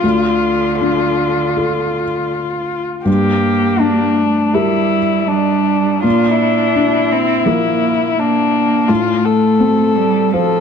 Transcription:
Already playing: F4
0.02 D2 D3
0.81 D4
1.56 F4 A4
3.05 G2 A#3 G4
3.80 D4
4.17 A3
4.54 G3 E4 G4 A#4
5.28 G3 D4
6.04 A#2 D4 F4
6.41 E4
6.76 D4
7.11 C4
7.46 F3 A#3 A#4
8.19 A#3 D4
8.88 A2 A3 F4
9.25 A4
9.60 C4
9.96 G3
10.32 F3 A4 C5 F5

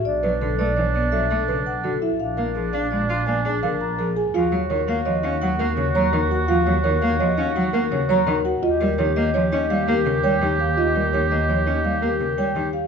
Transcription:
Already playing: F#4 E5
0.05 B1 D4 D5
0.23 F#3 B4
0.41 D3 A4
0.59 A3 B4 D5
0.76 E3 C#5
0.95 B3 D5
1.12 F#3 A4 E5
1.30 A3 A4
1.48 C#3 B4
1.66 F#5
1.84 D3 F#4 A4
2.02 E4 E5
2.20 A#1 D4 F5
2.37 A#3 A#4 F5
2.55 F3 G#4
2.73 D4 F5
2.91 G#3 D5
3.09 F4 F5
3.26 A#3 D5 G#5
3.45 D4 G#4
3.63 D3 A#4 F5
3.81 A#5
3.98 F3 G#4 A#4
4.16 G#4 G#5
4.34 D#2 F3 F4 F#4 F5
4.52 F#3 C#5
4.70 D#3 A#4 C#5
4.88 A#3 F5
5.05 F3 C#5 D#5
5.23 C#4 D#4 F5
5.42 F#3 F#5
5.59 A#3 A#4
5.77 C#3 C#5
5.95 F#3 C#5 A#5
6.13 D#3 A#4
6.31 F#4 F#5
6.48 F3 F4 F5
6.66 F#3 C#5
6.84 D#3 A#4 C#5
7.02 A#3 F5
7.20 F3 C#5 D#5
7.37 C#4 D#4 F5
7.55 F#3 F#5
7.73 A#3 A#4
7.91 C#3 C#5
8.09 F#3 C#5 A#5
8.27 D#3 A#4
8.45 F#4 F#5
8.62 D#2 F4 G4 D#5
8.81 G3 A#4
8.98 D#3 G4 C#5
9.16 A#3 D#5
9.34 F3 C#5
9.52 C#4 D#4 D#5
9.70 G3 F5
9.88 A#3 G4 A#4
10.06 C#3 A#4
10.23 G3 C#5 G5
10.41 D#3 G4
10.59 G4 F5
10.77 F4 D#5
10.95 G3 A#4
11.13 D#3 G4 C#5
11.31 A#3 D#5
11.49 F3 C#5
11.66 C#4 D#4 D#5
11.84 G3 F5
12.02 A#3 G4 A#4
12.20 C#3 A#4
12.38 G3 C#5 G5
12.56 D#3 G4
12.73 G4 F5

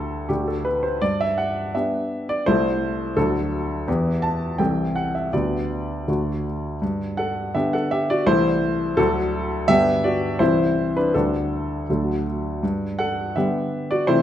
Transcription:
Already playing: D2 G3 D4 G4 A4
0.29 D2 A3 D4 F#4 G4
0.48 A4
0.65 B4
0.83 C5
1.02 G2 D5
1.21 E5
1.38 F#5
1.75 B3 D4 G4 E5
2.29 D5
2.46 C2 A3 E4 A4 C5
3.16 D2 F#3 D4 A4
3.88 E2 E3 B3 G4
4.22 A5
4.58 C2 E3 C4 A4 G5
4.96 F#5
5.15 E5
5.33 D2 D3 B3 G4 D5
6.08 D2 D3 A3 F#4
6.82 G2
7.17 A4 F#5
7.55 D3 B3 D4 G4 E5
7.73 A4 F#5
7.91 G4 E5
8.10 F#4 D5
8.26 C2 E3 A3 E4 C5
8.97 D2 D3 F#3 A3 D4 A4
9.68 G2 D3 G3 B3 G4 E5
10.04 F#4 D5
10.39 C2 E3 G3 C4 E4 C5
10.97 D4 B4
11.14 D2 D3 G3 D4 A4
11.90 D2 D3 F#3 A3
12.63 G2
12.99 A4 F#5
13.36 D3 G3 B3 G4 E5
13.91 F#4 D5
14.07 C3 E3 A3 E4 C5

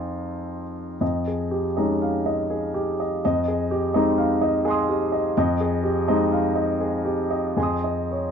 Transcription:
Already playing: F2 G#3 C4 D#4 F4 G#5 C6 D#6
1.01 F2 D#5
1.27 G#4
1.51 G4
1.77 G#3 C#4 D#4 D#5
2.02 F5
2.26 D#5
2.50 G#4
2.74 G4
3.00 D#5
3.25 F2 D#5
3.48 G#4
3.71 G4
3.94 G#3 C4 D#4 D#5
4.18 F5
4.41 D#5
4.65 G#4 G#5 C6
4.71 D#6
4.89 G4
5.12 D#5
5.37 F2 D#5
5.61 G#4
5.83 G4
6.08 G#3 C4 D#4 D#5
6.32 F5
6.55 D#5
6.81 G#4
7.05 G4
7.31 D#5
7.57 F2 G#4 G#5 C6
7.63 D#6
7.84 D#5
8.11 C#5

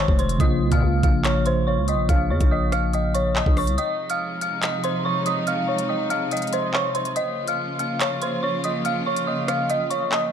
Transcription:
Already playing: D#3 G#3 F4
0.00 C#5 C#6
0.08 F1, kick
0.19 C5 C6, closed hi-hat
0.29 closed hi-hat
0.38 A#1 C#3 A#3 F4 D#5 D#6, kick, closed hi-hat
0.61 C2
0.71 A#2 F5 F6, kick, closed hi-hat
0.82 C#2
1.03 A#1 F5 F6, kick, closed hi-hat
1.24 C#5 C#6, clap, closed hi-hat
1.46 C5 C6, closed hi-hat
1.67 C#5 C#6
1.77 C#2
1.88 D#5 D#6, closed hi-hat
1.93 A#1
2.09 A#1 F5 F6, kick, closed hi-hat
2.30 F2 C#5 C#6
2.40 A#1, kick, closed hi-hat
2.51 D#5 D#6
2.72 F5 F6, cross-stick, closed hi-hat
2.93 D#5 D#6, closed hi-hat
3.14 C#5 C#6, closed hi-hat
3.36 D#5 D#6, clap
3.46 A#1, kick
3.57 C#5 C#6, cross-stick, open hi-hat
3.67 C2, closed hi-hat
3.78 C3 F3 G#3 D#4 D#5 D#6, closed hi-hat
4.10 F5 F6, closed hi-hat
4.41 F5 F6, closed hi-hat
4.62 D#5 D#6, clap, closed hi-hat
4.84 C5 C6, closed hi-hat
5.05 C#5 C#6
5.26 D#5 D#6, closed hi-hat
5.47 F5 F6, closed hi-hat
5.68 C#5 C#6
5.78 closed hi-hat
5.89 D#5 D#6
6.10 F5 F6, closed hi-hat
6.31 D#5 D#6, closed hi-hat
6.37 closed hi-hat
6.42 closed hi-hat
6.47 closed hi-hat
6.53 C5 C6, closed hi-hat
6.74 C#5 C#6, clap
6.95 C5 C6, closed hi-hat
7.05 closed hi-hat
7.16 C#3 F3 A#3 F4 D#5 D#6, closed hi-hat
7.47 F5 F6, closed hi-hat
7.79 F5 F6, closed hi-hat
8.00 C#5 C#6, clap, closed hi-hat
8.22 C5 C6, closed hi-hat
8.43 C#5 C#6
8.64 D#5 D#6, closed hi-hat
8.85 F5 F6, closed hi-hat
9.06 C#5 C#6
9.17 closed hi-hat
9.27 D#5 D#6
9.48 F5 F6, cross-stick, closed hi-hat
9.70 D#5 D#6, closed hi-hat
9.90 C#5 C#6, closed hi-hat
10.12 D#5 D#6, clap

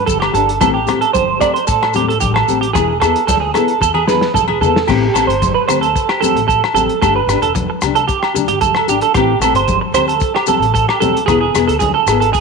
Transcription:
0.06 G1 A4, kick, closed hi-hat, high conga, maracas
0.20 G4, cross-stick, low agogo
0.33 G1 D4 G4 A4, closed hi-hat, muted conga, maracas
0.49 closed hi-hat
0.60 A1 E3 A3 C4 G4 A4, kick, cross-stick, closed hi-hat, low agogo, maracas
0.74 G4
0.86 A2 A3 C4 G4, cross-stick, closed hi-hat, muted conga, low agogo, maracas
1.01 A4, closed hi-hat
1.13 G1 C5, kick, closed hi-hat, high conga, maracas
1.40 A3 C4 G4 D5, kick, cross-stick, closed hi-hat, low agogo, maracas
1.54 C5, closed hi-hat
1.67 A2 A4, kick, closed hi-hat, muted conga, maracas
1.83 cross-stick, low agogo
1.94 A3 C4 G4, closed hi-hat, high conga, maracas
2.08 A4, closed hi-hat
2.20 A1 G4, kick, closed hi-hat, high conga, maracas
2.34 A4, cross-stick, low agogo
2.48 A1 A3 C4 G4, closed hi-hat, muted conga, maracas
2.61 G4, closed hi-hat
2.73 E1 E3 E4 G#4, muted nylon-string guitar stroke, kick, cross-stick, closed hi-hat, muted conga, low agogo, maracas
2.78 G#4
3.00 E2 E4 G#4 A4, cross-stick, closed hi-hat, muted conga, low agogo, maracas
3.05 B3
3.16 closed hi-hat
3.27 D2 A4, kick, closed hi-hat, high conga, maracas
3.40 G#4
3.54 B3 E4 G#4 A4, cross-stick, closed hi-hat, low agogo, maracas
3.68 closed hi-hat
3.80 E2 A4, kick, high tom, muted conga, maracas
3.94 G#4, high tom, low agogo
4.07 B3 E4 G#4 B4, snare, high conga, maracas
4.21 snare
4.34 E1 A4, kick, mid tom, high conga, maracas
4.48 G#4, mid tom, low agogo
4.60 E2 E4 G#4 A4, floor tom, muted conga, low conga, maracas
4.65 B3
4.76 snare
4.87 A1 E3 A3 C4 G4, kick, cross-stick, crash, muted conga, low agogo, maracas
5.14 A1 C4 G4 A4, cross-stick, closed hi-hat, muted conga, low agogo, maracas
5.18 A3
5.27 G1 C5, closed hi-hat, maracas
5.42 kick, closed hi-hat, high conga, maracas
5.54 B4
5.68 D2 C4 G4 C5, cross-stick, closed hi-hat, low agogo, maracas
5.72 A3
5.81 A4, closed hi-hat, maracas
5.96 kick, closed hi-hat, muted conga, maracas
6.09 G4, cross-stick, low agogo
6.21 C4 G4 A4, closed hi-hat, high conga, maracas
6.26 A3
6.35 A1, closed hi-hat
6.48 A4, kick, closed hi-hat, maracas
6.64 cross-stick, low agogo
6.74 A1 A3 C4 G4 A4, closed hi-hat, muted conga, high conga, maracas
6.89 closed hi-hat
7.02 G1 A3 D4 G4 A4, kick, cross-stick, closed hi-hat, muted conga, low agogo, maracas
7.16 B4
7.27 G1 G4, cross-stick, closed hi-hat, muted conga, low agogo, maracas
7.32 D4
7.41 E1 A4, closed hi-hat, maracas
7.55 muted clean electric guitar stroke, kick, closed hi-hat, high conga, maracas
7.70 muted clean electric guitar stroke
7.81 C2 G4, cross-stick, closed hi-hat, low agogo, maracas
7.86 D4
7.95 A4, closed hi-hat, maracas
8.08 G4, kick, closed hi-hat, muted conga, maracas
8.23 cross-stick, low agogo
8.34 D4 G4, muted clean electric guitar stroke, closed hi-hat, high conga, low conga, maracas
8.48 G1 G4, closed hi-hat
8.61 A4, kick, closed hi-hat, high conga, maracas
8.75 cross-stick, low agogo
8.87 G#1 D4 G4, closed hi-hat, muted conga, maracas
9.01 A4, closed hi-hat
9.14 A1 E3 A3 C4 G4, kick, cross-stick, closed hi-hat, low agogo, maracas
9.39 A1 G4 A4, cross-stick, closed hi-hat, muted conga, maracas
9.44 A3 C4, low agogo
9.53 G1 C5, closed hi-hat, maracas
9.68 kick, closed hi-hat, high conga, maracas
9.81 muted clean electric guitar stroke
9.92 D2 C4 G4 C5, cross-stick, closed hi-hat, low agogo, maracas
9.98 A3
10.07 A4, closed hi-hat, maracas
10.20 kick, closed hi-hat, muted conga, maracas
10.35 G4, cross-stick, low agogo
10.46 C4 G4 A4, closed hi-hat, high conga, maracas
10.59 A1, closed hi-hat
10.74 A4, kick, closed hi-hat, maracas
10.88 G4, cross-stick, low agogo
11.00 B1 A3 C4 G4 A4, closed hi-hat, muted conga, high conga, maracas
11.17 closed hi-hat
11.26 E1 E3 B3 E4 G#4, kick, cross-stick, closed hi-hat, muted conga, low agogo, maracas
11.31 G#4
11.41 G#4
11.55 E1 B3 E4 G#4, cross-stick, closed hi-hat, muted conga, low agogo, maracas
11.68 D2 A4, closed hi-hat, maracas
11.79 G#4, kick, closed hi-hat, high conga, maracas
11.94 A4
12.06 G#1 E4 G#4, cross-stick, closed hi-hat, low agogo, maracas
12.11 B3
12.20 A4, closed hi-hat, maracas
12.33 G#4, kick, closed hi-hat, maracas
12.37 muted conga

